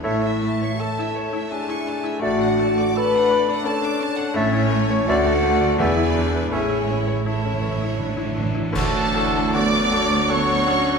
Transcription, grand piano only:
X:1
M:3/4
L:1/16
Q:1/4=82
K:A
V:1 name="Grand piano"
A,, E A, c A E c E D E D E | A,, D A, d A D d D C D C D | A,, E A, c D,, F A, d E,, E D B | A,, E C c E C c E D E D E |
[K:D] D,,2 [DFA]2 [DFA]2 [DFA]2 [DFA]2 [DFA]2 |]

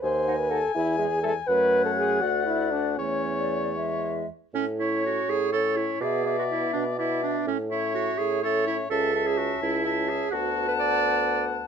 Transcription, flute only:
X:1
M:6/8
L:1/16
Q:3/8=83
K:A
V:1 name="Flute"
z2 f2 f2 z2 e2 e2 | c6 d6 | c3 d3 e4 z2 | z2 c6 c4 |
e2 e6 e4 | z2 e6 e4 | a2 a6 a4 | a12 |]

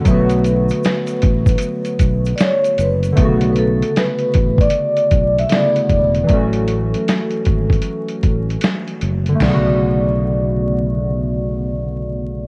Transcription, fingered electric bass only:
X:1
M:4/4
L:1/8
Q:"Swing 16ths" 1/4=77
K:Bm
V:1 name="Fingered electric bass" clef=bass
B,,,2 z A,,, z B,,, z F,,, | B,,,2 z A,,, z B,,, z E,,, | A,,,2 z ^G,,, z A,,, z F,,, | B,,,8 |]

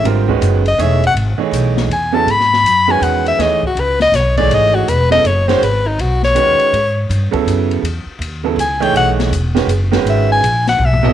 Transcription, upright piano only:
X:1
M:3/4
L:1/8
Q:"Swing" 1/4=162
K:E
V:1 name="Upright piano"
[=D,=G,^B,^E^A] [^D,^G,CF=B]2 z [=E,=A,DGc] z | z [E,A,DGc]3 z [C,F,B,EA] | z3 [D,G,CFB]3 | [E,A,DGc] z4 [E,A,DGc]- |
[E,A,DGc]2 z [C,F,B,EA] z [D,G,CFc] | z4 [D,G,CFB]2 | z3 [C,F,B,EA]3 | z3 [C,F,B,EA] z [E,A,DGc]- |
[E,A,DGc]2 z [D,G,CFB] z [D,G,CFB]- | [D,G,CFB]2 z3 [F,B,EAd] |]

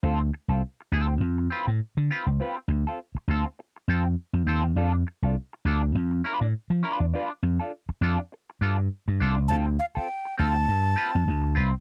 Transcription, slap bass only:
X:1
M:4/4
L:1/16
Q:"Swing 16ths" 1/4=101
K:Ddor
V:1 name="Slap bass" clef=bass
D,,2 z C,, z2 D,,2 F,,2 z A,, z D, z ^C,, | z2 D,, z3 D,, z3 F,,2 z F,, _E,, =E,, | F,,2 z C,, z2 D,,2 F,,2 z A,, z F, z E,, | z2 F,, z3 F,, z3 G,,2 z G,, C,, ^C,, |
D,,2 z4 D,,2 G,,2 z F,, D,,2 C,, z |]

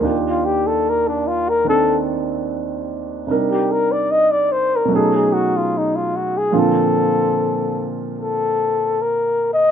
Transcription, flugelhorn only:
X:1
M:4/4
L:1/16
Q:"Swing" 1/4=74
K:Bb
V:1 name="Flugelhorn"
z F G A B D F B A2 z6 | z G B d e d c B A ^G ^F =F ^D F ^F G | A6 z2 A4 B2 e2 |]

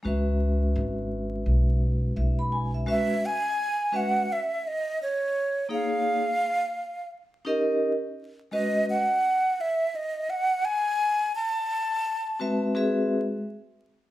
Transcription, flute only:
X:1
M:4/4
L:1/8
Q:"Swing 16ths" 1/4=85
K:G#m
V:1 name="Flute"
z8 | e g2 f e d c2 | ^e4 z4 | d f2 e d f g2 |
=a4 z4 |]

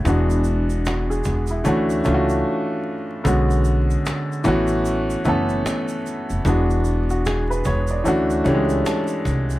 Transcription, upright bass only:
X:1
M:4/4
L:1/16
Q:"Swing 16ths" 1/4=75
K:Emix
V:1 name="Upright bass" clef=bass
E,,,6 E,,,2 D,,2 C,,2 z4 | B,,,4 z2 A,,,4 F,,,2 z3 ^E,,, | E,,,6 E,,,2 D,,2 C,,2 z2 =C,,2 |]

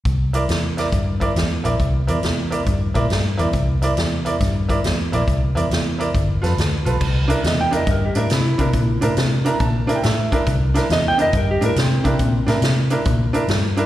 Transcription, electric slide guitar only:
X:1
M:4/4
L:1/8
Q:"Swing" 1/4=138
K:Cmix
V:1 name="Electric slide guitar"
z8 | z8 | z8 | z8 |
z2 (3_e g e (3B G B =E2- | E2 z6 | z2 (3_e g e (3B G B C2- | C2 z6 |]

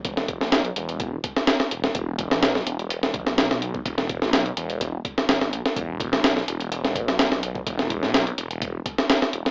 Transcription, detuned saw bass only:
X:1
M:4/4
L:1/16
Q:1/4=126
K:Em
V:1 name="Detuned saw bass" clef=bass
E,,,3 B,,,2 z E,,,3 z4 z E,,, z | E,,,3 B,,,2 z E,,,4 B,,,4- B,,, z | E,,,3 B,,,2 z E,,,3 z2 G,,, G,,,2 B,,, z | E,,,3 B,,,2 z E,,,4 B,,,4- B,,, z |
E,,,3 B,,,2 z E,,,3 z4 z E,,, z |]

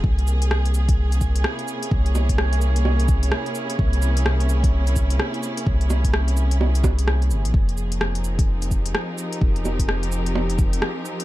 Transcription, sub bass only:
X:1
M:4/4
L:1/16
Q:"Swing 16ths" 1/4=128
K:Fm
V:1 name="Sub bass" clef=bass
C,,12 z4 | C,,12 z4 | C,,12 z4 | C,,12- C,,2 G,,, B,,, |
F,,,12 z4 | F,,,12 z4 |]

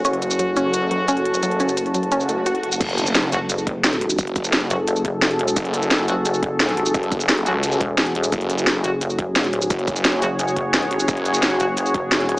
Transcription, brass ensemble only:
X:1
M:4/4
L:1/8
Q:1/4=174
K:F#m
V:1 name="Brass ensemble"
[F,CF]8- | [F,CF]8 | z3 [F,CF] z4 | z3 [F,CF] z4 |
z3 [F,CF] z4 | z3 [F,CF] z4 | z3 [F,CF] z4 | z3 [F,CF] z4 |
z3 [F,CF] z4 |]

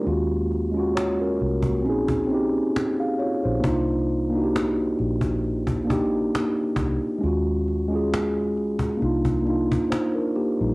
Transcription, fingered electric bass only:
X:1
M:4/4
L:1/16
Q:"Swing 16ths" 1/4=67
K:Eb
V:1 name="Fingered electric bass" clef=bass
E,,6 C,,2 B,,,4 z3 B,,, | C,,6 B,,,6 z2 C,, z | E,,6 _D,,2 C,,4 z3 B,,, |]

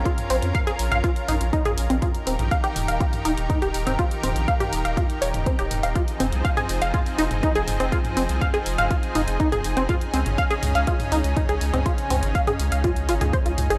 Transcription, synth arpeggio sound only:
X:1
M:4/4
L:1/16
Q:1/4=122
K:Fm
V:1 name="Synth arpeggio sound"
F z C z f A z f F z E z E A z C | F z C z f G z f F z E z E G z C | F z C z f G z f F z d z C G z f | F z C z f A z f F z E z E A z C |
F z C z f A z f F z E z E A z C | F z C z f A z f F z E z E A z C | F z C z f A z f F z F A c F z A |]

